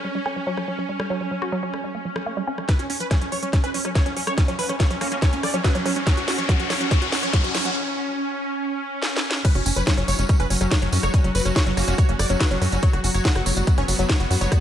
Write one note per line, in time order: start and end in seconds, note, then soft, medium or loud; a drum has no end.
0.00 2.67 C#4 medium
0.05 0.10 G3 medium
0.15 0.19 G3 medium
0.26 0.31 C#4 loud
0.26 cross-stick soft
0.36 0.45 F#3 medium
0.47 0.52 F#3 loud
0.57 0.66 F#3 medium
0.57 cross-stick soft
0.68 0.74 F#3 medium
0.79 0.82 F#3 medium
0.89 0.95 G3 medium
1.00 1.03 G3 medium
1.00 cross-stick medium
1.10 1.16 F#3 loud
1.21 1.29 F#3 medium
1.31 1.37 F#3 medium
1.42 1.50 F#4 loud
1.42 cross-stick soft
1.52 1.61 F#3 loud
1.63 1.66 F#3 medium
1.74 1.79 G3 medium
1.74 cross-stick soft
1.84 1.88 G3 medium
1.95 2.00 A#3 medium
2.05 2.09 F#3 medium
2.16 2.24 F#3 medium
2.16 cross-stick medium
2.26 2.32 A#3 loud
2.37 2.45 G3 loud
2.48 2.51 C#4 loud
2.58 2.66 F#3 medium
2.58 cross-stick soft
2.69 2.77 F#3 medium
2.69 9.46 C#4 medium
2.69 2.75 B4 loud
2.69 kick loud
2.69 cross-stick soft
2.69 snare soft
2.69 closed hi-hat loud
2.69 riser medium
2.79 2.86 C#4 medium
2.79 2.88 F#4 medium
2.79 closed hi-hat medium
2.90 2.93 C#4 medium
2.90 2.96 C#4 medium
2.90 open hi-hat loud
3.00 3.09 F#3 medium
3.00 3.07 B4 medium
3.00 closed hi-hat medium
3.11 3.19 F#3 loud
3.11 3.17 C#4 medium
3.11 kick loud
3.11 cross-stick medium
3.11 snare soft
3.11 closed hi-hat loud
3.21 3.27 F#3 medium
3.21 3.28 C#4 medium
3.21 closed hi-hat medium
3.32 3.35 F#3 medium
3.32 3.38 C#5 loud
3.32 open hi-hat medium
3.43 3.48 G3 medium
3.43 3.49 C#4 medium
3.43 closed hi-hat medium
3.53 3.57 G3 medium
3.53 3.59 C#4 medium
3.53 kick loud
3.53 cross-stick soft
3.53 snare medium
3.53 closed hi-hat medium
3.64 3.69 C#4 loud
3.64 3.70 B4 loud
3.64 closed hi-hat medium
3.74 3.83 F#3 medium
3.74 3.81 C#4 medium
3.74 open hi-hat loud
3.85 3.90 F#3 loud
3.85 3.91 C#4 medium
3.85 cross-stick soft
3.85 closed hi-hat medium
3.95 4.04 F#3 medium
3.95 4.02 C#5 loud
3.95 kick loud
3.95 snare medium
3.95 closed hi-hat medium
4.06 4.12 F#3 medium
4.06 4.12 C#4 medium
4.06 closed hi-hat medium
4.17 4.20 F#3 medium
4.17 4.23 C#4 medium
4.17 open hi-hat medium
4.27 4.33 G3 medium
4.27 4.33 C#5 loud
4.27 cross-stick medium
4.27 closed hi-hat medium
4.38 4.41 G3 medium
4.38 4.44 C#4 medium
4.38 kick loud
4.38 snare medium
4.38 closed hi-hat loud
4.48 4.54 F#3 loud
4.48 4.55 C#4 medium
4.48 closed hi-hat medium
4.59 4.67 F#3 medium
4.59 4.65 B4 medium
4.59 open hi-hat loud
4.69 4.75 F#3 medium
4.69 4.76 C#4 medium
4.69 cross-stick soft
4.69 closed hi-hat medium
4.80 4.88 F#4 loud
4.80 4.86 C#5 loud
4.80 kick loud
4.80 snare medium
4.80 closed hi-hat medium
4.90 4.99 F#3 loud
4.90 4.97 C#4 medium
4.90 closed hi-hat medium
5.01 5.04 F#3 medium
5.01 5.08 A#3 medium
5.01 5.07 C#4 medium
5.01 cross-stick soft
5.01 open hi-hat medium
5.12 5.17 G3 medium
5.12 5.18 A#3 medium
5.12 5.18 C#4 medium
5.12 closed hi-hat medium
5.22 5.26 G3 medium
5.22 5.28 C#5 medium
5.22 kick loud
5.22 snare medium
5.22 closed hi-hat medium
5.33 5.38 A#3 medium
5.33 5.39 C#4 medium
5.33 closed hi-hat medium
5.43 5.52 F#3 medium
5.43 5.50 D5 medium
5.43 cross-stick medium
5.43 open hi-hat loud
5.54 5.59 F#3 loud
5.54 5.60 C#4 medium
5.54 closed hi-hat medium
5.64 6.24 F#3 loud
5.64 5.73 F#4 loud
5.64 5.71 B4 loud
5.64 kick loud
5.64 snare medium
5.64 closed hi-hat medium
5.75 5.81 F#3 loud
5.75 5.81 C#4 medium
5.75 closed hi-hat medium
5.86 5.91 F#3 loud
5.86 5.92 C#4 medium
5.86 cross-stick soft
5.86 open hi-hat loud
5.96 6.02 G3 medium
5.96 6.02 C#4 medium
5.96 closed hi-hat medium
6.07 6.15 F#3 medium
6.07 6.13 C#5 medium
6.07 kick loud
6.07 snare medium
6.07 closed hi-hat medium
6.17 6.26 F#4 medium
6.17 6.24 F#4 medium
6.17 closed hi-hat medium
6.28 6.31 C#4 medium
6.28 6.34 F#4 medium
6.28 snare medium
6.28 open hi-hat loud
6.38 6.47 F#3 medium
6.38 6.45 C#5 medium
6.38 closed hi-hat medium
6.49 6.57 F#3 medium
6.49 6.55 F#4 medium
6.49 kick loud
6.49 snare medium
6.49 closed hi-hat medium
6.59 6.65 F#3 medium
6.59 6.66 F#4 medium
6.59 closed hi-hat soft
6.70 6.73 F#3 medium
6.70 6.76 C#5 medium
6.70 snare medium
6.70 open hi-hat medium
6.81 6.86 F#3 medium
6.81 6.87 F#4 medium
6.81 closed hi-hat medium
6.91 7.00 F#3 medium
6.91 6.98 C#5 loud
6.91 kick loud
6.91 snare medium
6.91 closed hi-hat medium
7.02 7.10 F#4 medium
7.02 7.08 F#4 medium
7.02 closed hi-hat medium
7.12 7.16 C#4 medium
7.12 7.19 F#4 medium
7.12 snare medium
7.12 open hi-hat loud
7.23 7.31 F#3 medium
7.23 7.29 C#5 medium
7.23 closed hi-hat medium
7.33 7.42 F#3 loud
7.33 7.40 F#4 medium
7.33 kick loud
7.33 snare medium
7.33 closed hi-hat medium
7.44 7.50 F#3 medium
7.44 7.50 F#4 medium
7.44 closed hi-hat medium
7.55 7.58 F#3 medium
7.55 7.61 C#5 medium
7.55 snare medium
7.55 open hi-hat loud
7.65 7.71 F#3 medium
7.65 7.71 F#4 medium
7.65 closed hi-hat medium
9.02 snare medium
9.17 snare medium
9.31 snare loud
9.45 9.53 F#3 medium
9.45 14.60 F#3 medium
9.45 12.85 F#4 medium
9.45 9.51 B4 loud
9.45 kick loud
9.45 cross-stick soft
9.45 closed hi-hat loud
9.45 crash loud
9.45 tambourine soft
9.55 9.62 F#1 medium
9.55 9.62 C#4 medium
9.55 9.64 F#4 medium
9.55 closed hi-hat medium
9.66 9.72 F#1 loud
9.66 9.72 C#4 medium
9.66 9.69 C#4 medium
9.66 open hi-hat loud
9.66 tambourine medium
9.76 9.83 F#1 medium
9.76 9.85 F#3 medium
9.76 9.83 B4 medium
9.76 closed hi-hat medium
9.76 tambourine medium
9.87 9.95 F#3 loud
9.87 9.93 C#4 medium
9.87 kick loud
9.87 cross-stick medium
9.87 snare loud
9.87 closed hi-hat loud
9.87 tambourine soft
9.98 10.04 F#1 medium
9.98 10.03 F#3 medium
9.98 10.04 C#4 medium
9.98 closed hi-hat medium
10.08 10.14 F#1 loud
10.08 10.11 F#3 medium
10.08 10.14 C#5 loud
10.08 open hi-hat medium
10.08 tambourine loud
10.19 10.25 F#1 medium
10.19 10.24 G3 medium
10.19 10.25 C#4 medium
10.19 closed hi-hat medium
10.19 tambourine medium
10.29 10.33 G3 medium
10.29 10.36 C#4 medium
10.29 kick loud
10.29 cross-stick soft
10.29 closed hi-hat medium
10.29 tambourine soft
10.40 10.46 F#1 medium
10.40 10.45 C#4 loud
10.40 10.46 B4 loud
10.40 closed hi-hat medium
10.50 10.57 F#1 loud
10.50 10.59 F#3 medium
10.50 10.57 C#4 medium
10.50 open hi-hat loud
10.50 tambourine medium
10.61 10.67 F#1 medium
10.61 10.67 F#3 loud
10.61 10.67 C#4 medium
10.61 cross-stick soft
10.61 closed hi-hat medium
10.61 tambourine medium
10.71 10.80 F#3 medium
10.71 10.78 C#5 loud
10.71 kick loud
10.71 snare loud
10.71 closed hi-hat loud
10.71 tambourine soft
10.82 10.88 F#1 medium
10.82 10.88 F#3 medium
10.82 10.88 C#4 medium
10.82 closed hi-hat medium
10.92 10.99 F#2 loud
10.92 10.96 F#3 medium
10.92 10.99 C#4 medium
10.92 open hi-hat loud
10.92 tambourine medium
11.03 11.09 F#1 medium
11.03 11.09 G3 medium
11.03 11.09 C#5 loud
11.03 cross-stick medium
11.03 tambourine soft
11.14 11.17 G3 medium
11.14 11.20 C#4 medium
11.14 kick loud
11.14 closed hi-hat medium
11.14 tambourine soft
11.24 11.31 F#1 medium
11.24 11.30 F#3 loud
11.24 11.31 C#4 medium
11.24 closed hi-hat medium
11.35 11.41 F#1 loud
11.35 11.43 F#3 medium
11.35 11.41 B4 medium
11.35 open hi-hat loud
11.35 tambourine loud
11.45 11.52 F#1 medium
11.45 11.51 F#3 medium
11.45 11.52 C#4 medium
11.45 cross-stick soft
11.45 closed hi-hat medium
11.45 tambourine medium
11.56 11.64 F#4 loud
11.56 11.62 C#5 loud
11.56 kick loud
11.56 snare loud
11.56 closed hi-hat loud
11.67 11.73 F#1 medium
11.67 11.75 F#3 loud
11.67 11.73 C#4 medium
11.67 closed hi-hat medium
11.77 11.83 F#1 loud
11.77 11.80 F#3 medium
11.77 11.84 A#3 medium
11.77 11.83 C#4 medium
11.77 cross-stick soft
11.77 open hi-hat loud
11.77 tambourine medium
11.88 11.94 F#1 medium
11.88 11.93 G3 medium
11.88 11.94 A#3 medium
11.88 11.94 C#4 medium
11.88 closed hi-hat medium
11.88 tambourine medium
11.98 12.02 G3 medium
11.98 12.05 C#5 medium
11.98 kick loud
11.98 closed hi-hat medium
11.98 tambourine soft
12.09 12.15 F#1 medium
12.09 12.14 A#3 medium
12.09 12.15 C#4 medium
12.09 closed hi-hat medium
12.19 12.26 F#1 loud
12.19 12.28 F#3 medium
12.19 12.26 D5 medium
12.19 cross-stick medium
12.19 open hi-hat loud
12.19 tambourine loud
12.29 12.36 F#1 medium
12.29 12.36 F#3 loud
12.29 12.36 C#4 medium
12.29 closed hi-hat medium
12.29 tambourine medium
12.41 13.00 F#3 loud
12.41 12.49 F#4 loud
12.41 12.47 B4 loud
12.41 kick loud
12.41 snare loud
12.41 closed hi-hat medium
12.41 tambourine soft
12.51 12.57 F#1 medium
12.51 12.57 F#3 loud
12.51 12.57 C#4 medium
12.51 closed hi-hat medium
12.62 12.68 F#2 loud
12.62 12.67 F#3 loud
12.62 12.68 C#4 medium
12.62 cross-stick soft
12.62 open hi-hat loud
12.62 tambourine medium
12.72 12.78 F#1 medium
12.72 12.78 G3 medium
12.72 12.78 C#4 medium
12.72 closed hi-hat medium
12.72 tambourine soft
12.82 12.91 F#3 medium
12.82 14.60 B3 medium
12.82 12.89 C#5 loud
12.82 kick loud
12.82 closed hi-hat medium
12.82 tambourine soft
12.93 13.00 F#1 medium
12.93 13.02 F#4 medium
12.93 13.00 F#4 medium
12.93 cross-stick soft
12.93 closed hi-hat medium
13.04 13.10 F#1 loud
13.04 13.07 C#4 medium
13.04 13.10 F#4 medium
13.04 open hi-hat loud
13.04 tambourine loud
13.14 13.21 F#1 medium
13.14 13.23 F#3 medium
13.14 13.21 C#5 loud
13.14 closed hi-hat medium
13.14 tambourine medium
13.25 13.33 F#3 loud
13.25 13.31 F#4 medium
13.25 kick loud
13.25 snare loud
13.25 closed hi-hat medium
13.36 13.42 F#1 medium
13.36 13.41 F#3 medium
13.36 13.42 F#4 medium
13.36 cross-stick medium
13.36 closed hi-hat medium
13.46 13.52 F#1 loud
13.46 13.49 F#3 medium
13.46 13.52 C#5 loud
13.46 open hi-hat loud
13.46 tambourine loud
13.57 13.63 F#1 medium
13.57 13.62 G3 medium
13.57 13.63 F#4 medium
13.57 closed hi-hat medium
13.57 tambourine medium
13.67 13.71 G3 medium
13.67 13.74 F#4 medium
13.67 kick loud
13.67 closed hi-hat medium
13.78 13.84 F#1 medium
13.78 13.83 C#4 loud
13.78 13.84 C#5 loud
13.78 cross-stick soft
13.78 closed hi-hat medium
13.88 13.95 F#1 loud
13.88 13.97 F#3 medium
13.88 13.95 F#4 medium
13.88 open hi-hat loud
13.88 tambourine loud
13.99 14.05 F#1 medium
13.99 14.05 F#3 loud
13.99 14.05 F#4 medium
13.99 closed hi-hat medium
13.99 tambourine medium
14.10 14.18 F#3 medium
14.10 14.16 C#5 loud
14.10 kick loud
14.10 cross-stick soft
14.10 snare loud
14.10 closed hi-hat medium
14.20 14.26 F#1 medium
14.20 14.26 F#3 medium
14.20 14.26 F#4 medium
14.20 closed hi-hat medium
14.31 14.37 F#2 loud
14.31 14.34 F#3 medium
14.31 14.37 F#4 medium
14.31 open hi-hat loud
14.31 tambourine loud
14.41 14.47 F#1 medium
14.41 14.47 G3 medium
14.41 14.47 C#5 loud
14.41 closed hi-hat medium
14.41 tambourine medium
14.51 14.55 G3 medium
14.51 14.58 F#4 medium
14.51 kick loud
14.51 cross-stick medium
14.51 closed hi-hat medium
14.51 tambourine soft